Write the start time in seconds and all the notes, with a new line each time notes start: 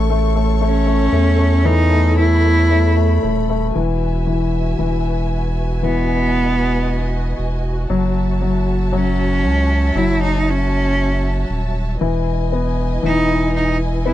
Already playing: A1 A3 A4 C#5 C#6
0.10 A3
0.36 A3
0.61 A3 C#4
0.87 A3
1.12 E2 A3
1.39 A3
1.65 E3 D#4 B5
1.91 A3
2.18 A3 E4
2.44 A3
2.70 A3
2.97 A3
3.23 D#1 A3
3.50 A3
3.75 E1 E3 F#4 B4 E5 G#5
4.27 E3
4.79 E1 E3
5.83 E3 B3 D#5
7.39 E1
7.89 F#1 F#3 C#5 E5 A5
8.41 F#3
8.92 F#3 C#4
9.44 C#2
9.95 F#1 F#3 E4
10.23 D#4
10.50 C#4
11.50 D#1
12.00 E1 E3 B4 D#5 G#5
12.52 B3
13.03 E1 E3 D#4
13.56 D#4
14.06 B3 E4